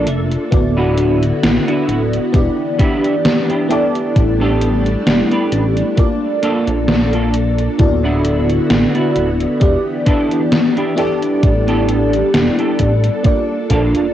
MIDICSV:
0, 0, Header, 1, 7, 480
1, 0, Start_track
1, 0, Key_signature, 2, "major"
1, 0, Tempo, 909091
1, 275, Time_signature, 4, 2, 24, 8
1, 7464, End_track
2, 0, Start_track
2, 0, Title_t, "FM electric piano"
2, 0, Program_c, 0, 5
2, 0, Control_c, 0, 64, 127
2, 0, Note_on_c, 0, 58, 80
2, 0, Note_on_c, 0, 62, 74
2, 0, Note_on_c, 0, 65, 73
2, 0, Note_on_c, 0, 69, 73
2, 0, Note_on_c, 0, 74, 85
2, 227, Note_off_c, 0, 58, 0
2, 229, Note_off_c, 0, 62, 0
2, 231, Note_off_c, 0, 65, 0
2, 233, Note_off_c, 0, 69, 0
2, 235, Note_off_c, 0, 74, 0
2, 268, Note_on_c, 0, 59, 80
2, 272, Note_on_c, 0, 64, 76
2, 276, Note_on_c, 0, 66, 73
2, 280, Note_on_c, 0, 69, 76
2, 281, Control_c, 0, 64, 0
2, 285, Note_on_c, 0, 74, 88
2, 360, Control_c, 0, 64, 127
2, 1188, Note_off_c, 0, 59, 0
2, 1190, Note_off_c, 0, 64, 0
2, 1192, Note_off_c, 0, 66, 0
2, 1194, Note_off_c, 0, 69, 0
2, 1196, Note_off_c, 0, 74, 0
2, 1228, Note_on_c, 0, 59, 77
2, 1232, Note_on_c, 0, 62, 74
2, 1236, Note_on_c, 0, 64, 70
2, 1240, Note_on_c, 0, 67, 75
2, 1243, Control_c, 0, 64, 0
2, 1245, Note_on_c, 0, 74, 84
2, 1324, Control_c, 0, 64, 127
2, 1908, Note_off_c, 0, 59, 0
2, 1910, Note_off_c, 0, 62, 0
2, 1912, Note_off_c, 0, 64, 0
2, 1914, Note_off_c, 0, 67, 0
2, 1916, Note_off_c, 0, 74, 0
2, 1947, Note_on_c, 0, 59, 92
2, 1951, Note_on_c, 0, 64, 87
2, 1955, Note_on_c, 0, 67, 87
2, 1958, Note_on_c, 0, 69, 85
2, 1962, Control_c, 0, 64, 0
2, 1964, Note_on_c, 0, 74, 106
2, 2047, Control_c, 0, 64, 127
2, 3107, Note_off_c, 0, 59, 0
2, 3109, Note_off_c, 0, 64, 0
2, 3111, Note_off_c, 0, 67, 0
2, 3113, Note_off_c, 0, 69, 0
2, 3116, Note_off_c, 0, 74, 0
2, 3148, Note_on_c, 0, 58, 78
2, 3152, Note_on_c, 0, 62, 70
2, 3156, Note_on_c, 0, 65, 70
2, 3160, Note_on_c, 0, 69, 72
2, 3162, Control_c, 0, 64, 0
2, 3163, Note_on_c, 0, 74, 89
2, 3267, Control_c, 0, 64, 127
2, 4068, Note_off_c, 0, 58, 0
2, 4070, Note_off_c, 0, 62, 0
2, 4072, Note_off_c, 0, 65, 0
2, 4074, Note_off_c, 0, 69, 0
2, 4075, Note_off_c, 0, 74, 0
2, 4108, Note_on_c, 0, 59, 81
2, 4111, Note_on_c, 0, 64, 77
2, 4115, Note_on_c, 0, 66, 78
2, 4119, Note_on_c, 0, 69, 78
2, 4123, Control_c, 0, 64, 0
2, 4124, Note_on_c, 0, 74, 91
2, 4220, Control_c, 0, 64, 127
2, 5028, Note_off_c, 0, 59, 0
2, 5030, Note_off_c, 0, 64, 0
2, 5032, Note_off_c, 0, 66, 0
2, 5034, Note_off_c, 0, 69, 0
2, 5036, Note_off_c, 0, 74, 0
2, 5067, Note_on_c, 0, 59, 82
2, 5070, Note_on_c, 0, 62, 72
2, 5075, Note_on_c, 0, 64, 72
2, 5078, Note_on_c, 0, 67, 72
2, 5082, Note_on_c, 0, 74, 88
2, 5083, Control_c, 0, 64, 0
2, 5178, Control_c, 0, 64, 127
2, 5747, Note_off_c, 0, 59, 0
2, 5749, Note_off_c, 0, 62, 0
2, 5752, Note_off_c, 0, 64, 0
2, 5753, Note_off_c, 0, 67, 0
2, 5755, Note_off_c, 0, 74, 0
2, 5788, Note_on_c, 0, 59, 93
2, 5791, Note_on_c, 0, 64, 88
2, 5794, Note_on_c, 0, 67, 86
2, 5798, Note_on_c, 0, 69, 88
2, 5803, Control_c, 0, 64, 0
2, 5803, Note_on_c, 0, 74, 101
2, 5898, Control_c, 0, 64, 127
2, 6948, Note_off_c, 0, 59, 0
2, 6949, Note_off_c, 0, 64, 0
2, 6951, Note_off_c, 0, 67, 0
2, 6953, Note_off_c, 0, 69, 0
2, 6955, Note_off_c, 0, 74, 0
2, 6986, Note_on_c, 0, 58, 77
2, 6991, Note_on_c, 0, 62, 74
2, 6994, Note_on_c, 0, 65, 71
2, 6999, Note_on_c, 0, 69, 73
2, 7002, Note_on_c, 0, 74, 89
2, 7003, Control_c, 0, 64, 0
2, 7083, Control_c, 0, 64, 127
2, 7464, Note_off_c, 0, 58, 0
2, 7464, Note_off_c, 0, 62, 0
2, 7464, Note_off_c, 0, 65, 0
2, 7464, Note_off_c, 0, 69, 0
2, 7464, Note_off_c, 0, 74, 0
2, 7464, End_track
3, 0, Start_track
3, 0, Title_t, "Clean electric guitar"
3, 0, Program_c, 1, 27
3, 35, Note_on_c, 1, 76, 72
3, 259, Note_off_c, 1, 76, 0
3, 404, Note_on_c, 1, 62, 105
3, 405, Note_on_c, 1, 59, 107
3, 407, Note_on_c, 1, 64, 103
3, 411, Note_on_c, 1, 66, 124
3, 645, Note_off_c, 1, 59, 0
3, 646, Note_off_c, 1, 62, 0
3, 647, Note_off_c, 1, 64, 0
3, 648, Note_off_c, 1, 66, 0
3, 882, Note_on_c, 1, 59, 88
3, 884, Note_on_c, 1, 62, 76
3, 886, Note_on_c, 1, 64, 83
3, 890, Note_on_c, 1, 66, 94
3, 1059, Note_off_c, 1, 59, 0
3, 1060, Note_off_c, 1, 62, 0
3, 1061, Note_off_c, 1, 64, 0
3, 1062, Note_off_c, 1, 66, 0
3, 1472, Note_on_c, 1, 59, 120
3, 1474, Note_on_c, 1, 62, 108
3, 1479, Note_on_c, 1, 64, 111
3, 1479, Note_on_c, 1, 67, 127
3, 1659, Note_off_c, 1, 59, 0
3, 1661, Note_off_c, 1, 62, 0
3, 1662, Note_off_c, 1, 64, 0
3, 1663, Note_off_c, 1, 67, 0
3, 1842, Note_on_c, 1, 59, 92
3, 1846, Note_on_c, 1, 62, 84
3, 1848, Note_on_c, 1, 64, 81
3, 1850, Note_on_c, 1, 67, 97
3, 1945, Note_off_c, 1, 59, 0
3, 1948, Note_off_c, 1, 62, 0
3, 1951, Note_off_c, 1, 67, 0
3, 1952, Note_on_c, 1, 59, 93
3, 1954, Note_on_c, 1, 62, 88
3, 1956, Note_off_c, 1, 64, 0
3, 1957, Note_on_c, 1, 67, 84
3, 1959, Note_on_c, 1, 69, 100
3, 2246, Note_off_c, 1, 59, 0
3, 2247, Note_off_c, 1, 62, 0
3, 2249, Note_off_c, 1, 67, 0
3, 2250, Note_off_c, 1, 69, 0
3, 2323, Note_on_c, 1, 59, 117
3, 2325, Note_on_c, 1, 62, 105
3, 2328, Note_on_c, 1, 67, 99
3, 2330, Note_on_c, 1, 69, 121
3, 2564, Note_off_c, 1, 59, 0
3, 2566, Note_off_c, 1, 62, 0
3, 2567, Note_off_c, 1, 67, 0
3, 2568, Note_off_c, 1, 69, 0
3, 2802, Note_on_c, 1, 59, 85
3, 2805, Note_on_c, 1, 62, 79
3, 2807, Note_on_c, 1, 67, 82
3, 2809, Note_on_c, 1, 71, 96
3, 2979, Note_off_c, 1, 59, 0
3, 2980, Note_off_c, 1, 62, 0
3, 2981, Note_off_c, 1, 67, 0
3, 2982, Note_off_c, 1, 71, 0
3, 3392, Note_on_c, 1, 58, 117
3, 3394, Note_on_c, 1, 62, 109
3, 3396, Note_on_c, 1, 65, 106
3, 3399, Note_on_c, 1, 69, 122
3, 3579, Note_off_c, 1, 58, 0
3, 3580, Note_off_c, 1, 62, 0
3, 3581, Note_off_c, 1, 65, 0
3, 3583, Note_off_c, 1, 69, 0
3, 3763, Note_on_c, 1, 58, 89
3, 3765, Note_on_c, 1, 62, 85
3, 3769, Note_on_c, 1, 65, 79
3, 3771, Note_on_c, 1, 69, 103
3, 3874, Note_off_c, 1, 58, 0
3, 3875, Note_off_c, 1, 62, 0
3, 3876, Note_off_c, 1, 65, 0
3, 3878, Note_off_c, 1, 69, 0
3, 4241, Note_on_c, 1, 59, 106
3, 4244, Note_on_c, 1, 62, 98
3, 4246, Note_on_c, 1, 64, 107
3, 4249, Note_on_c, 1, 66, 121
3, 4484, Note_off_c, 1, 59, 0
3, 4485, Note_off_c, 1, 62, 0
3, 4486, Note_off_c, 1, 64, 0
3, 4488, Note_off_c, 1, 66, 0
3, 4722, Note_on_c, 1, 59, 88
3, 4726, Note_on_c, 1, 62, 81
3, 4727, Note_on_c, 1, 64, 81
3, 4729, Note_on_c, 1, 66, 98
3, 4899, Note_off_c, 1, 59, 0
3, 4900, Note_off_c, 1, 62, 0
3, 4901, Note_off_c, 1, 64, 0
3, 4902, Note_off_c, 1, 66, 0
3, 5311, Note_on_c, 1, 59, 112
3, 5314, Note_on_c, 1, 62, 105
3, 5318, Note_on_c, 1, 64, 108
3, 5318, Note_on_c, 1, 69, 127
3, 5499, Note_off_c, 1, 59, 0
3, 5500, Note_off_c, 1, 62, 0
3, 5501, Note_off_c, 1, 64, 0
3, 5502, Note_off_c, 1, 69, 0
3, 5683, Note_on_c, 1, 59, 89
3, 5686, Note_on_c, 1, 62, 84
3, 5690, Note_on_c, 1, 64, 80
3, 5690, Note_on_c, 1, 67, 103
3, 5787, Note_off_c, 1, 59, 0
3, 5790, Note_off_c, 1, 62, 0
3, 5792, Note_off_c, 1, 67, 0
3, 5793, Note_on_c, 1, 59, 92
3, 5796, Note_off_c, 1, 64, 0
3, 5796, Note_on_c, 1, 62, 83
3, 5798, Note_on_c, 1, 67, 84
3, 5801, Note_on_c, 1, 69, 97
3, 6087, Note_off_c, 1, 59, 0
3, 6088, Note_off_c, 1, 62, 0
3, 6089, Note_off_c, 1, 67, 0
3, 6090, Note_off_c, 1, 69, 0
3, 6162, Note_on_c, 1, 59, 110
3, 6165, Note_on_c, 1, 62, 100
3, 6168, Note_on_c, 1, 67, 99
3, 6170, Note_on_c, 1, 69, 127
3, 6404, Note_off_c, 1, 59, 0
3, 6406, Note_off_c, 1, 62, 0
3, 6407, Note_off_c, 1, 67, 0
3, 6408, Note_off_c, 1, 69, 0
3, 6644, Note_on_c, 1, 59, 87
3, 6646, Note_on_c, 1, 62, 83
3, 6649, Note_on_c, 1, 67, 78
3, 6652, Note_on_c, 1, 69, 96
3, 6820, Note_off_c, 1, 59, 0
3, 6821, Note_off_c, 1, 62, 0
3, 6822, Note_off_c, 1, 67, 0
3, 6823, Note_off_c, 1, 69, 0
3, 7232, Note_on_c, 1, 58, 115
3, 7235, Note_on_c, 1, 62, 110
3, 7238, Note_on_c, 1, 65, 106
3, 7239, Note_on_c, 1, 69, 124
3, 7419, Note_off_c, 1, 58, 0
3, 7421, Note_off_c, 1, 62, 0
3, 7422, Note_off_c, 1, 65, 0
3, 7423, Note_off_c, 1, 69, 0
3, 7464, End_track
4, 0, Start_track
4, 0, Title_t, "String machine"
4, 0, Program_c, 2, 50
4, 0, Note_on_c, 2, 58, 80
4, 0, Note_on_c, 2, 62, 78
4, 0, Note_on_c, 2, 69, 78
4, 254, Note_off_c, 2, 62, 0
4, 254, Note_off_c, 2, 69, 0
4, 265, Note_off_c, 2, 58, 0
4, 275, Note_on_c, 2, 59, 78
4, 275, Note_on_c, 2, 64, 81
4, 275, Note_on_c, 2, 66, 93
4, 276, Note_on_c, 2, 50, 85
4, 1225, Note_off_c, 2, 64, 0
4, 1225, Note_off_c, 2, 66, 0
4, 1226, Note_off_c, 2, 50, 0
4, 1232, Note_on_c, 2, 52, 85
4, 1232, Note_on_c, 2, 62, 78
4, 1232, Note_on_c, 2, 67, 93
4, 1938, Note_off_c, 2, 59, 0
4, 1946, Note_off_c, 2, 52, 0
4, 1946, Note_off_c, 2, 67, 0
4, 1952, Note_on_c, 2, 57, 78
4, 1953, Note_on_c, 2, 55, 85
4, 3141, Note_off_c, 2, 57, 0
4, 3142, Note_off_c, 2, 55, 0
4, 3152, Note_on_c, 2, 58, 82
4, 3154, Note_on_c, 2, 69, 87
4, 4093, Note_off_c, 2, 62, 0
4, 4104, Note_off_c, 2, 58, 0
4, 4105, Note_off_c, 2, 69, 0
4, 4114, Note_on_c, 2, 50, 86
4, 4115, Note_on_c, 2, 64, 78
4, 4115, Note_on_c, 2, 66, 97
4, 4116, Note_on_c, 2, 59, 82
4, 5065, Note_off_c, 2, 50, 0
4, 5065, Note_off_c, 2, 64, 0
4, 5065, Note_off_c, 2, 66, 0
4, 5077, Note_on_c, 2, 52, 84
4, 5077, Note_on_c, 2, 62, 83
4, 5078, Note_on_c, 2, 67, 95
4, 5779, Note_off_c, 2, 59, 0
4, 5789, Note_off_c, 2, 52, 0
4, 5789, Note_off_c, 2, 67, 0
4, 5794, Note_on_c, 2, 69, 81
4, 5795, Note_on_c, 2, 55, 90
4, 6983, Note_off_c, 2, 55, 0
4, 6994, Note_on_c, 2, 58, 79
4, 7464, Note_off_c, 2, 58, 0
4, 7464, Note_off_c, 2, 62, 0
4, 7464, Note_off_c, 2, 69, 0
4, 7464, End_track
5, 0, Start_track
5, 0, Title_t, "Analog synth bass"
5, 0, Program_c, 3, 38
5, 34, Note_on_c, 3, 29, 95
5, 195, Note_off_c, 3, 29, 0
5, 276, Note_on_c, 3, 26, 98
5, 697, Note_off_c, 3, 26, 0
5, 756, Note_on_c, 3, 33, 88
5, 836, Note_off_c, 3, 33, 0
5, 996, Note_on_c, 3, 26, 102
5, 1156, Note_off_c, 3, 26, 0
5, 1236, Note_on_c, 3, 28, 102
5, 1316, Note_off_c, 3, 28, 0
5, 2196, Note_on_c, 3, 33, 97
5, 2617, Note_off_c, 3, 33, 0
5, 2674, Note_on_c, 3, 28, 89
5, 2755, Note_off_c, 3, 28, 0
5, 2915, Note_on_c, 3, 33, 102
5, 3075, Note_off_c, 3, 33, 0
5, 3525, Note_on_c, 3, 34, 95
5, 4057, Note_off_c, 3, 34, 0
5, 4116, Note_on_c, 3, 26, 97
5, 4538, Note_off_c, 3, 26, 0
5, 4596, Note_on_c, 3, 33, 93
5, 4676, Note_off_c, 3, 33, 0
5, 4836, Note_on_c, 3, 26, 95
5, 4996, Note_off_c, 3, 26, 0
5, 5076, Note_on_c, 3, 28, 96
5, 5156, Note_off_c, 3, 28, 0
5, 6036, Note_on_c, 3, 33, 97
5, 6457, Note_off_c, 3, 33, 0
5, 6515, Note_on_c, 3, 28, 92
5, 6595, Note_off_c, 3, 28, 0
5, 6756, Note_on_c, 3, 33, 100
5, 6916, Note_off_c, 3, 33, 0
5, 7235, Note_on_c, 3, 34, 101
5, 7363, Note_off_c, 3, 34, 0
5, 7366, Note_on_c, 3, 29, 44
5, 7454, Note_off_c, 3, 29, 0
5, 7464, End_track
6, 0, Start_track
6, 0, Title_t, "Muted clean electric guitar strokes"
6, 164, Note_on_c, 9, 29, 33
6, 216, Note_off_c, 9, 29, 0
6, 1231, Note_on_c, 9, 29, 33
6, 1283, Note_off_c, 9, 29, 0
6, 3152, Note_on_c, 9, 29, 34
6, 3205, Note_off_c, 9, 29, 0
6, 4003, Note_on_c, 9, 29, 33
6, 4056, Note_off_c, 9, 29, 0
6, 5073, Note_on_c, 9, 29, 33
6, 5126, Note_off_c, 9, 29, 0
6, 6994, Note_on_c, 9, 29, 32
6, 7047, Note_off_c, 9, 29, 0
6, 7464, End_track
7, 0, Start_track
7, 0, Title_t, "Drums"
7, 36, Note_on_c, 9, 42, 84
7, 89, Note_off_c, 9, 42, 0
7, 167, Note_on_c, 9, 42, 51
7, 220, Note_off_c, 9, 42, 0
7, 276, Note_on_c, 9, 36, 123
7, 276, Note_on_c, 9, 42, 74
7, 328, Note_off_c, 9, 42, 0
7, 329, Note_off_c, 9, 36, 0
7, 515, Note_on_c, 9, 42, 75
7, 568, Note_off_c, 9, 42, 0
7, 647, Note_on_c, 9, 42, 51
7, 700, Note_off_c, 9, 42, 0
7, 757, Note_on_c, 9, 38, 122
7, 757, Note_on_c, 9, 42, 76
7, 810, Note_off_c, 9, 38, 0
7, 810, Note_off_c, 9, 42, 0
7, 888, Note_on_c, 9, 42, 33
7, 940, Note_off_c, 9, 42, 0
7, 997, Note_on_c, 9, 42, 75
7, 1050, Note_off_c, 9, 42, 0
7, 1127, Note_on_c, 9, 42, 51
7, 1180, Note_off_c, 9, 42, 0
7, 1236, Note_on_c, 9, 36, 127
7, 1236, Note_on_c, 9, 42, 75
7, 1289, Note_off_c, 9, 36, 0
7, 1289, Note_off_c, 9, 42, 0
7, 1476, Note_on_c, 9, 36, 110
7, 1476, Note_on_c, 9, 42, 81
7, 1528, Note_off_c, 9, 42, 0
7, 1529, Note_off_c, 9, 36, 0
7, 1607, Note_on_c, 9, 42, 49
7, 1660, Note_off_c, 9, 42, 0
7, 1716, Note_on_c, 9, 38, 114
7, 1716, Note_on_c, 9, 42, 76
7, 1769, Note_off_c, 9, 38, 0
7, 1769, Note_off_c, 9, 42, 0
7, 1847, Note_on_c, 9, 42, 37
7, 1900, Note_off_c, 9, 42, 0
7, 1956, Note_on_c, 9, 42, 81
7, 2009, Note_off_c, 9, 42, 0
7, 2086, Note_on_c, 9, 42, 49
7, 2139, Note_off_c, 9, 42, 0
7, 2196, Note_on_c, 9, 36, 121
7, 2196, Note_on_c, 9, 42, 76
7, 2249, Note_off_c, 9, 36, 0
7, 2249, Note_off_c, 9, 42, 0
7, 2436, Note_on_c, 9, 42, 75
7, 2489, Note_off_c, 9, 42, 0
7, 2566, Note_on_c, 9, 42, 50
7, 2619, Note_off_c, 9, 42, 0
7, 2675, Note_on_c, 9, 38, 116
7, 2675, Note_on_c, 9, 42, 75
7, 2728, Note_off_c, 9, 38, 0
7, 2728, Note_off_c, 9, 42, 0
7, 2805, Note_on_c, 9, 42, 35
7, 2858, Note_off_c, 9, 42, 0
7, 2914, Note_on_c, 9, 42, 76
7, 2967, Note_off_c, 9, 42, 0
7, 3045, Note_on_c, 9, 42, 50
7, 3097, Note_off_c, 9, 42, 0
7, 3154, Note_on_c, 9, 42, 74
7, 3156, Note_on_c, 9, 36, 119
7, 3206, Note_off_c, 9, 42, 0
7, 3209, Note_off_c, 9, 36, 0
7, 3394, Note_on_c, 9, 42, 77
7, 3446, Note_off_c, 9, 42, 0
7, 3524, Note_on_c, 9, 42, 49
7, 3577, Note_off_c, 9, 42, 0
7, 3633, Note_on_c, 9, 38, 115
7, 3633, Note_on_c, 9, 42, 74
7, 3686, Note_off_c, 9, 38, 0
7, 3686, Note_off_c, 9, 42, 0
7, 3765, Note_on_c, 9, 42, 38
7, 3817, Note_off_c, 9, 42, 0
7, 3874, Note_on_c, 9, 42, 79
7, 3926, Note_off_c, 9, 42, 0
7, 4004, Note_on_c, 9, 42, 52
7, 4057, Note_off_c, 9, 42, 0
7, 4113, Note_on_c, 9, 42, 78
7, 4116, Note_on_c, 9, 36, 121
7, 4166, Note_off_c, 9, 42, 0
7, 4169, Note_off_c, 9, 36, 0
7, 4354, Note_on_c, 9, 42, 76
7, 4406, Note_off_c, 9, 42, 0
7, 4485, Note_on_c, 9, 42, 49
7, 4538, Note_off_c, 9, 42, 0
7, 4593, Note_on_c, 9, 38, 114
7, 4593, Note_on_c, 9, 42, 78
7, 4646, Note_off_c, 9, 38, 0
7, 4646, Note_off_c, 9, 42, 0
7, 4724, Note_on_c, 9, 42, 34
7, 4777, Note_off_c, 9, 42, 0
7, 4834, Note_on_c, 9, 42, 78
7, 4886, Note_off_c, 9, 42, 0
7, 4964, Note_on_c, 9, 42, 52
7, 5017, Note_off_c, 9, 42, 0
7, 5074, Note_on_c, 9, 42, 80
7, 5076, Note_on_c, 9, 36, 116
7, 5126, Note_off_c, 9, 42, 0
7, 5129, Note_off_c, 9, 36, 0
7, 5314, Note_on_c, 9, 42, 77
7, 5316, Note_on_c, 9, 36, 107
7, 5366, Note_off_c, 9, 42, 0
7, 5369, Note_off_c, 9, 36, 0
7, 5445, Note_on_c, 9, 42, 51
7, 5498, Note_off_c, 9, 42, 0
7, 5554, Note_on_c, 9, 38, 105
7, 5554, Note_on_c, 9, 42, 76
7, 5607, Note_off_c, 9, 38, 0
7, 5607, Note_off_c, 9, 42, 0
7, 5686, Note_on_c, 9, 42, 39
7, 5739, Note_off_c, 9, 42, 0
7, 5795, Note_on_c, 9, 42, 80
7, 5848, Note_off_c, 9, 42, 0
7, 5926, Note_on_c, 9, 42, 51
7, 5979, Note_off_c, 9, 42, 0
7, 6035, Note_on_c, 9, 42, 81
7, 6036, Note_on_c, 9, 36, 122
7, 6087, Note_off_c, 9, 42, 0
7, 6089, Note_off_c, 9, 36, 0
7, 6165, Note_on_c, 9, 42, 36
7, 6218, Note_off_c, 9, 42, 0
7, 6274, Note_on_c, 9, 42, 83
7, 6327, Note_off_c, 9, 42, 0
7, 6405, Note_on_c, 9, 42, 51
7, 6457, Note_off_c, 9, 42, 0
7, 6514, Note_on_c, 9, 38, 113
7, 6514, Note_on_c, 9, 42, 79
7, 6567, Note_off_c, 9, 38, 0
7, 6567, Note_off_c, 9, 42, 0
7, 6644, Note_on_c, 9, 42, 34
7, 6697, Note_off_c, 9, 42, 0
7, 6752, Note_on_c, 9, 42, 83
7, 6756, Note_on_c, 9, 36, 59
7, 6805, Note_off_c, 9, 42, 0
7, 6809, Note_off_c, 9, 36, 0
7, 6884, Note_on_c, 9, 42, 57
7, 6937, Note_off_c, 9, 42, 0
7, 6993, Note_on_c, 9, 42, 80
7, 6996, Note_on_c, 9, 36, 121
7, 7046, Note_off_c, 9, 42, 0
7, 7049, Note_off_c, 9, 36, 0
7, 7233, Note_on_c, 9, 42, 85
7, 7236, Note_on_c, 9, 36, 61
7, 7286, Note_off_c, 9, 42, 0
7, 7288, Note_off_c, 9, 36, 0
7, 7364, Note_on_c, 9, 42, 54
7, 7417, Note_off_c, 9, 42, 0
7, 7464, End_track
0, 0, End_of_file